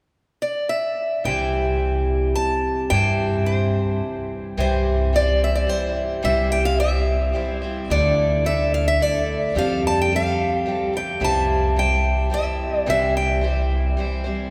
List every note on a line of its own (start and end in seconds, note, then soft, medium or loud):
0.42 0.68 D5 medium
0.69 1.25 E5 medium
1.24 2.32 C2 medium
1.24 2.89 C3 medium
1.24 2.90 E3 medium
1.24 2.91 G3 medium
1.24 2.92 C4 medium
1.24 2.93 E4 medium
1.24 2.35 G5 medium
1.28 2.94 C5 medium
2.36 2.90 A5 medium
2.90 3.99 G2 medium
2.90 4.56 C3 medium
2.90 4.56 E3 medium
2.90 4.57 G3 medium
2.90 4.57 C4 medium
2.90 4.57 E4 medium
2.90 3.43 G5 medium
2.94 4.58 C5 medium
3.46 4.26 C5 medium
4.57 5.65 C2 medium
4.57 5.13 C3 medium
4.57 6.22 E3 medium
4.57 5.12 G3 medium
4.57 5.13 C4 medium
4.57 5.14 E4 medium
4.57 5.14 C5 medium
4.57 5.11 C5 medium
5.13 5.66 G3 soft
5.13 5.67 C4 medium
5.13 5.69 E4 medium
5.13 5.69 C5 medium
5.13 5.41 D5 medium
5.44 5.57 E5 medium
5.55 5.69 D5 medium
5.67 6.22 G3 soft
5.67 6.23 C4 medium
5.67 6.24 E4 medium
5.67 6.26 C5 medium
5.67 6.23 C5 medium
6.22 7.31 C2 medium
6.22 6.79 C3 medium
6.22 7.91 E3 medium
6.22 6.77 G3 medium
6.22 6.78 C4 medium
6.22 6.80 E4 medium
6.22 6.80 C5 medium
6.22 6.50 E5 medium
6.52 6.65 G5 medium
6.65 6.79 F5 medium
6.78 7.32 G3 medium
6.78 7.33 C4 medium
6.78 7.34 E4 medium
6.78 7.35 C5 medium
6.78 7.59 E5 medium
7.33 7.62 G3 soft
7.33 7.63 C4 medium
7.33 7.62 E4 medium
7.33 7.60 C5 medium
7.62 7.91 G3 soft
7.62 7.91 C4 soft
7.62 7.91 E4 soft
7.62 7.90 C5 soft
7.90 8.97 D2 medium
7.90 8.46 D3 medium
7.90 8.50 F3 medium
7.90 8.44 A3 medium
7.90 8.45 D4 medium
7.90 8.46 E4 medium
7.90 8.47 A4 medium
7.90 8.46 D5 medium
8.45 8.99 A3 soft
8.45 9.00 D4 soft
8.45 9.01 E4 medium
8.45 9.02 A4 medium
8.45 8.74 E5 medium
8.74 8.87 F5 medium
8.88 9.02 E5 medium
9.00 9.56 A3 medium
9.00 9.56 D4 medium
9.00 9.57 E4 medium
9.00 9.56 A4 medium
9.00 9.57 D5 medium
9.55 10.63 F2 medium
9.55 10.11 F3 medium
9.55 10.11 G3 medium
9.55 10.12 C4 medium
9.55 10.12 G4 medium
9.55 10.12 A4 medium
9.55 9.83 F5 medium
9.87 10.00 A5 medium
10.02 10.13 G5 medium
10.11 10.65 G3 soft
10.11 10.66 C4 medium
10.11 10.68 G4 medium
10.11 10.67 A4 medium
10.16 10.93 F5 medium
10.66 10.94 G3 medium
10.66 10.94 C4 medium
10.66 10.94 G4 medium
10.66 10.92 A4 medium
10.93 11.21 C4 soft
10.93 11.21 G4 soft
10.93 11.21 A4 soft
10.93 11.21 G5 medium
11.20 12.28 C2 medium
11.20 11.76 C3 medium
11.20 12.86 E3 medium
11.20 11.75 G3 medium
11.20 11.76 C4 medium
11.20 11.78 E4 medium
11.20 11.77 C5 medium
11.24 11.79 A5 medium
11.76 12.29 G3 medium
11.76 12.30 C4 medium
11.76 12.32 E4 medium
11.76 12.32 C5 medium
11.76 12.33 G5 medium
12.30 12.86 G3 soft
12.30 12.86 C4 medium
12.30 12.87 E4 medium
12.30 12.87 C5 medium
12.30 12.78 E5 medium
12.78 12.89 D5 medium
12.86 13.94 C2 medium
12.86 13.43 C3 medium
12.86 14.50 E3 medium
12.86 13.40 G3 medium
12.86 13.41 C4 medium
12.86 13.43 E4 medium
12.86 13.43 C5 medium
12.86 13.16 E5 medium
13.17 14.23 G5 medium
13.41 13.96 G3 medium
13.41 13.97 C4 medium
13.41 13.98 E4 soft
13.41 13.99 C5 medium
13.97 14.25 G3 medium
13.97 14.25 C4 medium
13.97 14.24 E4 medium
13.97 14.23 C5 medium
14.24 14.50 G3 soft
14.24 14.50 C4 soft
14.24 14.50 E4 soft
14.24 14.50 C5 soft